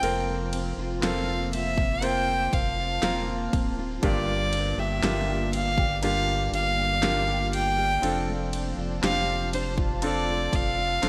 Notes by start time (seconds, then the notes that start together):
Already playing: A3 C4 F4 C5 G5
0.02 F1 F2 A#3 C4 F4 A#4, ride
0.28 A#3
0.53 C4, ride
0.78 F1 F4
1.01 F1 A#3 C4 F4 A4 F5, snare, ride
1.28 F4
1.53 C4 E5, ride
1.78 F4, kick
2.01 A#3 C4 F4 C5 G5 A5, ride
2.28 A#3
2.53 F1 C4 F5, kick, ride
2.78 F4
3.02 E1 A#3 C4 F4 A#4, snare, ride
3.28 F4
3.53 D1 C4, kick, ride
3.78 F4
4.02 G1 G2 A#3 D4 F4 G4 D5 G5, kick, ride
4.28 A#3
4.53 D4, ride
4.77 G1 G4 E5
5.02 G1 A#3 D4 F4 G4, snare, ride
5.28 G4
5.53 D4 F5, ride
5.78 G4, kick
6.02 G2 A#3 D4 F4 G4 F5, ride
6.28 A#3
6.52 G1 D4 F5, ride
6.77 G4
7.02 A#3 D4 F4 G4, snare, ride
7.27 G4
7.52 D4 G5, ride
7.77 G4
8.02 F1 F2 C4 D4 F4 A4 C5 A5, ride
8.27 A3
8.53 D4, ride
8.77 F1 F4
9.02 F1 C4 D4 F4 G4 F5, snare, ride
9.28 F4
9.53 D4 C5, ride
9.78 F4, kick
10.02 C4 D4 F4 A4 D5, ride
10.28 A3
10.53 F1 D4 F5, kick, ride
10.78 F4
11.02 E1 C4 D4 F4 A4, snare, ride